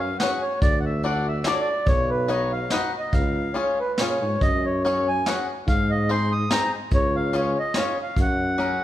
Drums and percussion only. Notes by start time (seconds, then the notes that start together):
0.20 snare, closed hi-hat
0.62 kick, closed hi-hat
1.03 closed hi-hat
1.44 snare, closed hi-hat
1.86 kick, closed hi-hat
2.29 closed hi-hat
2.70 snare, closed hi-hat
3.13 kick, closed hi-hat
3.55 closed hi-hat
3.98 snare, closed hi-hat
4.41 kick, closed hi-hat
4.85 closed hi-hat
5.26 snare, closed hi-hat
5.68 kick, closed hi-hat
6.09 closed hi-hat
6.51 snare, closed hi-hat
6.91 kick, closed hi-hat
7.33 closed hi-hat
7.74 snare, closed hi-hat
8.16 kick, closed hi-hat
8.59 closed hi-hat